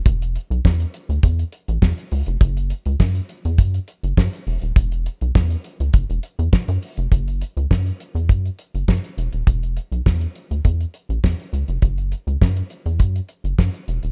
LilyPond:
<<
  \new Staff \with { instrumentName = "Analog synth bass" } { \clef bass \time 4/4 \key fis \minor \tempo 4 = 102 e,,8. b,,16 e,8 r16 d,16 e,8 r16 a,,16 e,16 r16 cis,16 eis,,16 | fis,,8. cis,16 fis,8 r16 e,16 fis,8 r16 fis,,16 fis,16 r16 e,,16 dis,,16 | e,,8. b,,16 e,8 r16 cis,16 fis,,16 e,,16 r16 e,16 r16 fis,16 r16 eis,,16 | fis,,8. cis,16 fis,8 r16 e,16 fis,8 r16 fis,,16 fis,16 r16 e,,16 dis,,16 |
e,,8. b,,16 e,8 r16 d,16 e,8 r16 a,,16 e,16 r16 cis,16 eis,,16 | fis,,8. cis,16 fis,8 r16 e,16 fis,8 r16 fis,,16 fis,16 r16 e,,16 dis,,16 | }
  \new DrumStaff \with { instrumentName = "Drums" } \drummode { \time 4/4 <hh bd>16 hh16 hh16 hh16 <bd sn>16 hh16 hh16 hh16 <hh bd>16 hh16 hh16 hh16 <bd sn>16 hh16 hho16 hh16 | <hh bd>16 hh16 hh16 hh16 <bd sn>16 hh16 hh16 hh16 <hh bd>16 hh16 hh16 hh16 <bd sn>16 hh16 hho16 hh16 | <hh bd>16 hh16 hh16 hh16 <bd sn>16 hh16 hh16 hh16 <hh bd>16 hh16 hh16 hh16 <bd sn>16 hh16 hho16 hh16 | <hh bd>16 hh16 hh16 hh16 <bd sn>16 hh16 hh16 hh16 <hh bd>16 hh16 hh16 hh16 <bd sn>16 hh16 hh16 hh16 |
<hh bd>16 hh16 hh16 hh16 <bd sn>16 hh16 hh16 hh16 <hh bd>16 hh16 hh16 hh16 <bd sn>16 hh16 hh16 hh16 | <hh bd>16 hh16 hh16 hh16 <bd sn>16 hh16 hh16 hh16 <hh bd>16 hh16 hh16 hh16 <bd sn>16 hh16 hh16 hh16 | }
>>